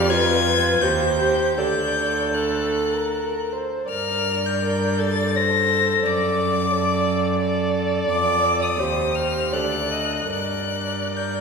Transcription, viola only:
Already playing: G4
0.10 F4
0.82 G4
1.19 G4
1.58 A4
3.88 A#4
4.63 A#4
4.99 A4
6.71 A4
8.79 G4
9.54 A4
10.33 A#4

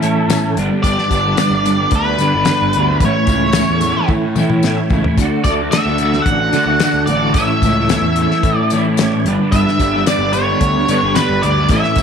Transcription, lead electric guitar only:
Already playing: A4
0.83 D5
1.95 B4
3.05 C#5
5.44 D5
5.71 E5
6.22 F#5
7.06 D5
7.34 E5
8.56 D5
9.52 E5
10.07 D5
10.33 C#5
11.15 B4
11.42 D5
11.72 E5

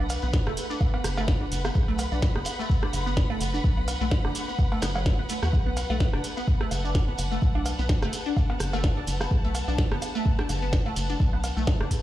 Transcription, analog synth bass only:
Already playing: B1
0.23 B1
0.47 F#1
1.04 F#1
1.52 F#1
1.75 B1
2.12 B1
2.36 F#1
2.93 F#1
3.41 F#1
3.64 B1
4.01 B1
4.25 F#1
4.82 F#1
5.43 E2
5.53 B1
5.90 B1
6.13 F#1
6.71 F#1
7.19 F#1
7.42 B1
7.79 B1
8.03 F#1
8.60 F#1
9.07 F#1
9.31 B1
9.68 B1
9.91 F#1
10.49 F#1
10.96 F#1
11.20 B1
11.57 B1
11.80 F#1

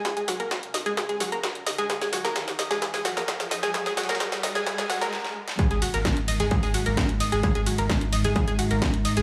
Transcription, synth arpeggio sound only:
0.05 G#4
0.17 G#4
0.28 F#4
0.40 A#4
0.74 D#5
0.86 G#4
0.97 G#4
1.09 G#4
1.20 F#4
1.32 A#4
1.67 D#5
1.78 G#4
1.90 G#4
2.01 G#4
2.13 F#4
2.25 A#4
2.59 D#5
2.71 G#4
2.82 G#4
2.94 G#4
3.05 F#4
3.17 A#4
3.51 D#5
3.63 G#4
3.74 G#4
3.86 G#4
3.97 F#4
4.09 A#4
4.44 D#5
4.55 G#4
4.66 G#4
4.78 G#4
4.90 F#4
5.02 A#4
5.59 G#4
5.71 G#4
5.82 F#4
5.94 A#4
6.28 D#5
6.40 G#4
6.51 G#4
6.63 G#4
6.74 F#4
6.86 A#4
7.20 D#5
7.32 G#4
7.44 G#4
7.55 G#4
7.67 F#4
7.79 A#4
8.13 D#5
8.25 G#4
8.36 G#4
8.48 G#4
8.59 F#4
8.71 A#4
9.05 D#5
9.17 G#4

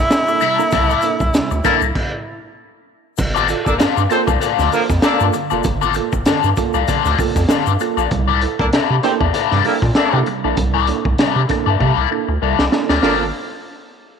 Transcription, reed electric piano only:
0.28 A#3 D4 E4 A4
0.42 C3 G3
0.59 A#3 D4 E4 A4
0.73 C3 G3
0.90 E4 A4
1.03 A#3 D4 E4 A4
1.34 C3 G3
1.64 A#3 D4 E4 A4
1.82 E4 A4
3.19 G2 D3
3.49 F4 A4
4.11 A#3 F4 A4
4.42 F4 A4
4.59 G2 D3
4.73 A#3 F4 A4
5.21 A#3 F4 A4
5.35 G2 D3
5.52 A#3 F4 A4
5.66 G2 D3
5.83 F4 A4
5.96 A#3 F4 A4
6.27 G2 D3
6.58 A#3 F4 A4
6.76 F4 A4
6.89 G2 D3
7.19 A#3 F4 A4
7.37 F4 A4
7.50 G2 D3
7.81 A#3 F4 A4
7.99 F4 A4
8.12 C3 G3
8.43 E4 A4
9.04 A#3 D4 E4 A4
9.35 E4 A4
9.52 C3 G3
9.66 A#3 D4 E4 A4
10.13 A#3 D4 E4 A4
10.27 C3 G3
10.44 A#3 D4 E4 A4
10.58 C3 G3
10.75 E4 A4
10.88 A#3 D4 E4 A4
11.19 C3 G3
11.49 A#3 D4 E4 A4
11.67 E4 A4
11.81 C3 G3
12.11 A#3 D4 E4 A4
12.28 E4 A4
12.42 C3 G3
12.72 A#3 D4 E4 A4
12.90 E4 A4
13.02 A#3 F4 A4

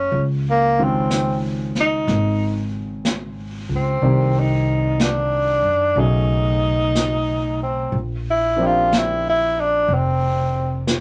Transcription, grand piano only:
Already playing: F#3 A3 B3 C#4 D#4 A4
0.78 C#3 D#3 G#3 C4 F4
4.02 D#3 A#3 C4 G4 D5
5.96 C#3 F#3 A3 D#4 G#4
8.56 F3 A#3 C4 D4
8.62 G4

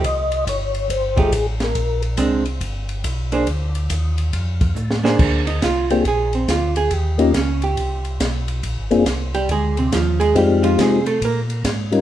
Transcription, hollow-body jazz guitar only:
1.16 F3 A3 D#4 G4
2.17 G#3 C4 D4
3.32 A#3 D4 G#4 C5
5.04 A#3 D4 G#4 C5
5.47 D#4
5.64 F4
5.91 G4
6.08 G#4
6.35 C4
6.50 F4
6.77 G#4
6.94 G4
7.20 A#3
7.37 C#4
7.64 G4
9.35 G3 G4
9.51 G#3 G#4
9.78 C3 C4
9.94 F3 F4
10.20 G#3 G#4
10.37 G3 G4
10.63 F3 F4
10.80 G#3 G#4
11.06 A3 A4
11.25 A#3 A#4

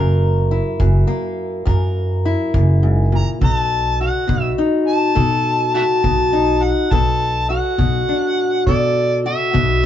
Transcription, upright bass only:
Already playing: F#1
0.80 F#1
1.66 F#2
2.54 F#1
3.41 B1
4.29 B1
5.16 B2
6.04 B1
6.91 B1
7.78 B1
8.67 B2
9.54 B1

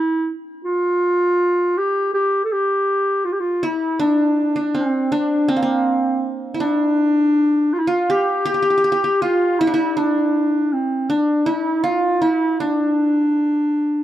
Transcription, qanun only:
3.63 E4
4.00 D4
4.56 D4
4.75 C4
5.12 D4
5.48 C4
5.56 A#3
5.63 C4
6.54 E4
6.60 D4
7.87 F4
8.10 G4
8.46 G4
8.54 G4
8.62 G4
8.70 G4
8.78 G4
8.84 G4
8.92 G4
9.04 G4
9.22 F4
9.61 E4
9.67 D4
9.74 E4
9.97 D4
11.10 D4
11.46 E4
11.84 F4
12.22 E4
12.60 D4

